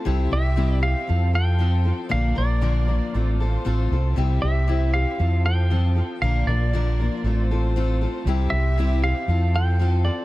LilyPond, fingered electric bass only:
\new Staff \with { instrumentName = "Fingered electric bass" } { \clef bass \time 4/4 \key f \major \tempo 4 = 117 c,8 c,4. f,2 | bes,,8 bes,,4. a,,4 a,,8 c,8 | c,8 c,4. f,2 | bes,,8 bes,,4. a,,2 |
c,8 c,4. f,2 | }